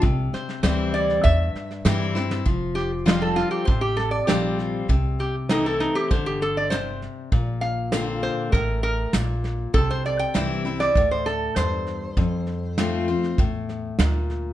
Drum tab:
HH |----p-------p---|----p-------p---|----p-------p---|----p-------p---|
SD |o-ooo-ooo-ooo-oo|o-o-o-o-o-o-o-o-|o-o-o-ooo-o-o-o-|o-o-o-o-o-o-o-o-|
BD |o-------o-------|o-------o-------|o-------o-------|o-------o-------|

HH |----p-------p---|----p-------p---|
SD |o-o-o-ooo-o-o-o-|o-o-o-ooo-o-o-o-|
BD |o-------o-------|o-------o-------|